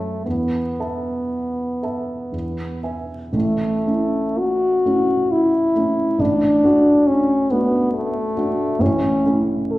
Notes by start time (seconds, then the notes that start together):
Already playing: F#2 A3 A4 C#5 A5
0.26 E2 B3
0.79 A4 E5 A5
1.83 A4 E5 A5
2.32 E2
2.83 B4 E5 G#5
3.33 A1 A2 A3
3.86 A3 C#4 E4
4.39 F#4
4.86 A3 C#4 E4
5.32 E4
5.75 A3 C#4 E4
6.19 A1 A2 D4
6.63 A3 D4 F#4
7.07 C#4
7.51 A3 B3 D4 F#4
7.94 A3
8.37 A3 D4 F#4
8.79 A1 A2 C#4
9.26 A3 C#4 E4
9.72 A4